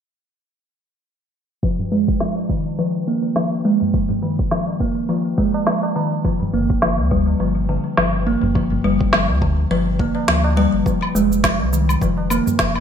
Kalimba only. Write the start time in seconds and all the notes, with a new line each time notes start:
1.63 F3
1.92 G#3
2.21 F3
2.50 D#3
2.79 F3
3.08 A#3
3.36 F3
3.65 G#3
3.94 F3
4.22 D#3
4.51 F3
4.80 A#3
5.09 F3
5.38 G#3
5.67 F3
5.96 D#3
6.25 F3
6.53 A#3
6.82 F3
7.11 G3
7.40 F3
7.69 D3
7.98 F3
8.27 A#3
8.55 F3
8.84 G3
9.13 F3
9.42 D3
9.71 F3
10.00 A#3
10.29 F3
10.57 G3
10.86 F3
11.15 G#3
11.44 F3
11.73 D#3
12.02 F3
12.31 A#3
12.59 F3